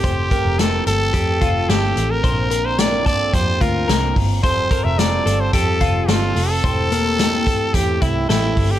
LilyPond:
<<
  \new Staff \with { instrumentName = "Clean electric guitar" } { \time 4/4 \key f \major \tempo 4 = 109 c''8 bes'4 a'8 g'8 f'8 a'4 | c''8 bes'4 a'8 g'8 f'8 bes'4 | c''8 bes'4 a'8 g'8 f'8 a'4 | c''8 bes4 a'8 g'8 e'8 a'4 | }
  \new Staff \with { instrumentName = "Trumpet" } { \time 4/4 \key f \major g'4 a'8 a'4. g'8. bes'16~ | bes'8. c''16 d''8 d''8 c''8 bes'4 r8 | c''8. e''16 d''8. c''16 a'4 f'8. a'16~ | a'2 g'8 e'8 e'8. g'16 | }
  \new Staff \with { instrumentName = "Clean electric guitar" } { \time 4/4 \key f \major <f a c' g'>8 <a c' g'>8 <f a c' g'>4 <f a c' g'>4 <f a c' g'>4 | <bes, d bes c' f'>4 <d bes c' f'>4 <bes, d bes c' f'>4 <d bes c' f'>8 <bes c' f'>8 | <f g c' f' a'>8 <c' f' a'>8 <g c' f' a'>4 <f g c' f' a'>4 <g c' f' a'>8 <c' f' a'>8 | <e a c' g'>8 <a c' g'>8 <e a c' g'>4 <e a c' g'>4 <e a c' g'>8 <a c' g'>8 | }
  \new Staff \with { instrumentName = "Picked electric bass" } { \clef bass \time 4/4 \key f \major f,,8 r16 f,,8. g,,8 f,8 f,,8 g,,8 a,,8 | bes,,2 f,8 d,8 c,8 g,,8 | f,,8 r16 f,,8. g,,8 f,8 f,,8 g,,8 f,,8 | e,,2 e,8 c,8 a,,8 g,,8 | }
  \new DrumStaff \with { instrumentName = "Drums" } \drummode { \time 4/4 <hh bd>8 <hh bd>8 <hh sn>8 hh8 <hh bd>8 <hh bd>8 <hh sn>8 hh8 | <hh bd>8 hh8 <hh sn>8 <hh bd>8 <hh bd>8 <hh bd>8 <hh sn>8 <hho bd>8 | <hh bd>8 <hh bd>8 <hh sn>8 hh8 <hh bd>8 <hh bd>8 <hh sn>8 hho8 | <hh bd>8 hh8 <hh sn>8 <hh bd>8 <hh bd>8 <hh bd>8 <hh sn>8 <hho bd>8 | }
>>